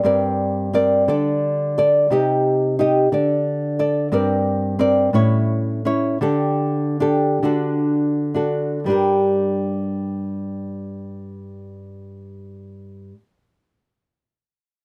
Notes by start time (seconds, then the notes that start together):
Already playing: G3
0.03 G2 C4 A#4 D5
0.73 C4 A#4 D5
1.08 D3 A4 D5
1.78 A4 D5
2.10 C3 D#4 G4 D#5
2.79 D#4 G4 D#5
3.12 D3 A4 D5
3.79 A4 D5
4.12 G2 C4 A#4 D5
4.79 C4 A#4 D5
5.13 A2 C#4 E4 C#5
5.85 C#4 E4 C#5
6.21 D3 D4 G4 A4
7.00 D4 G4 A4
7.43 D3 D4 F#4 A4
8.34 D4 F#4 A4
8.84 G2 G3 D4
8.90 G4 A#4